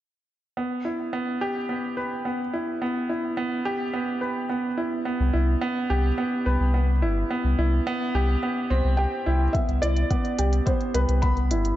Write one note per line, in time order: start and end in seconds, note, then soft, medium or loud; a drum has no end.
0.57 0.84 B3 medium
0.85 1.12 E4 medium
1.13 1.40 B3 medium
1.41 1.57 G4 medium
1.69 1.96 B3 medium
1.97 2.24 B4 medium
2.25 2.41 B3 medium
2.53 2.80 E4 medium
2.82 3.08 B3 medium
3.09 3.36 E4 medium
3.37 3.64 B3 medium
3.65 3.82 G4 medium
3.94 4.20 B3 medium
4.21 4.48 B4 medium
4.49 4.66 B3 medium
4.78 5.04 E4 medium
5.05 5.32 B3 medium
5.20 5.31 C2 medium
5.33 5.56 C2 loud
5.33 5.60 E4 medium
5.61 5.88 B3 medium
5.90 6.12 C2 medium
5.90 6.06 G4 medium
6.18 6.45 B3 medium
6.46 6.57 C2 medium
6.46 6.73 B4 medium
6.60 7.03 C2 medium
6.74 6.90 B3 medium
7.02 7.24 G1 medium
7.02 7.29 E4 medium
7.31 7.57 B3 medium
7.44 7.55 C2 medium
7.58 7.80 C2 medium
7.58 7.85 E4 medium
7.87 8.13 B3 medium
8.14 8.36 C2 medium
8.14 8.31 G4 medium
8.43 8.69 B3 medium
8.70 8.81 C2 medium
8.70 8.97 C4 medium
8.84 9.06 C2 medium
8.97 9.25 G4 medium
8.97 9.56 G5 medium
9.26 9.48 C2 medium
9.26 9.42 E4 medium
9.53 9.81 B3 medium
9.53 9.83 E5 medium
9.53 kick medium
9.53 closed hi-hat soft
9.68 9.79 C2 medium
9.68 closed hi-hat soft
9.82 10.04 C2 medium
9.82 10.09 E4 medium
9.82 10.69 D5 loud
9.82 closed hi-hat medium
9.96 closed hi-hat soft
10.11 10.37 B3 medium
10.11 kick medium
10.11 closed hi-hat soft
10.25 closed hi-hat soft
10.39 10.60 C2 medium
10.39 10.55 G4 medium
10.39 closed hi-hat medium
10.53 closed hi-hat soft
10.66 10.93 B3 medium
10.66 10.95 C5 medium
10.66 kick medium
10.66 closed hi-hat soft
10.81 closed hi-hat soft
10.94 11.05 C2 medium
10.94 11.23 B4 medium
10.94 11.21 B4 medium
10.94 closed hi-hat medium
11.09 11.52 C2 medium
11.09 closed hi-hat soft
11.22 11.39 B3 medium
11.22 11.76 B5 medium
11.22 kick medium
11.22 closed hi-hat soft
11.37 closed hi-hat soft
11.50 11.72 G1 medium
11.50 11.76 E4 medium
11.50 closed hi-hat medium
11.65 closed hi-hat soft